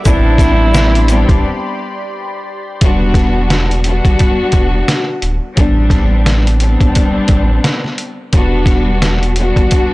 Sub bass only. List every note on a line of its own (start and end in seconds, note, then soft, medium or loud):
0.06 1.25 A1 loud
1.29 1.42 A1 loud
2.82 4.01 E1 loud
4.05 4.17 G1 loud
4.53 4.83 E1 medium
5.23 5.40 D1 medium
5.58 6.77 A1 loud
6.81 6.93 A1 medium
7.15 7.21 A1 soft
7.29 7.59 A1 medium
8.33 9.52 E1 loud
9.56 9.69 G1 loud